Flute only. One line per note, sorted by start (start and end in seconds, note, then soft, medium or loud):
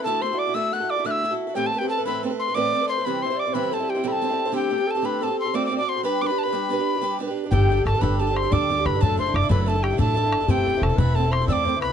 0.04 0.23 A4 medium
0.21 0.39 C5 medium
0.37 0.56 D5 medium
0.54 0.74 E5 medium
0.73 0.92 F#5 medium
0.90 1.05 D5 medium
1.06 1.57 E5 medium
1.55 1.67 G4 medium
1.80 1.90 G4 medium
1.89 2.07 A4 medium
2.06 2.23 B4 medium
2.55 2.92 D5 medium
2.90 3.08 C5 medium
3.06 3.22 B4 medium
3.23 3.38 C5 medium
3.37 3.54 D5 medium
3.53 3.73 B4 medium
3.71 3.90 A4 medium
3.89 4.05 G4 medium
4.06 4.56 A4 medium
4.54 4.89 G4 medium
4.87 5.07 A4 medium
5.05 5.23 B4 medium
5.21 5.55 A4 medium
5.54 5.66 D5 medium
5.76 5.86 D5 medium
5.88 6.05 C5 medium
6.03 7.20 B4 medium
7.53 7.87 G4 medium
7.85 8.01 A4 medium
7.99 8.18 B4 medium
8.18 8.36 A4 medium
8.34 8.52 C5 medium
8.51 8.87 D5 medium
8.86 9.01 B4 medium
9.04 9.21 A4 medium
9.20 9.38 C5 medium
9.36 9.53 D5 medium
9.52 9.63 B4 medium
9.64 9.70 B4 soft
9.68 9.84 A4 medium
9.83 10.00 G4 medium
9.99 10.49 A4 medium
10.47 10.83 G4 medium
10.82 10.98 A4 medium
10.96 11.17 B4 medium
11.15 11.32 A4 medium
11.31 11.50 C5 medium
11.48 11.66 D5 medium
11.64 11.83 C5 loud
11.81 11.93 B4 medium